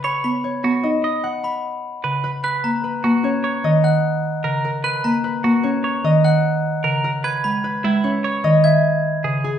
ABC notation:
X:1
M:6/4
L:1/8
Q:1/4=150
K:B
V:1 name="Glockenspiel"
b b z4 z b z4 | f' a z4 z f' z4 | f' a z4 z f' z4 | g' b z4 z g' z4 |]
V:2 name="Harp"
[Bcdfb]2 c2 d2 f b4 B- | B2 B2 c2 d f4 A- | A2 B2 c2 d f4 A | z2 B2 c2 d e4 G |]
V:3 name="Clean electric guitar"
c z2 F z d z4 B z | B z2 F z c z4 A z | B z2 F z c z4 A z | B z2 E z c z4 G z |]
V:4 name="Marimba"
z B, z B, D z4 z C, z | z A, z A, C z D, z3 C, z | z A, z A, C z D, z3 C, z | z G, z G, C z D, z3 C, z |]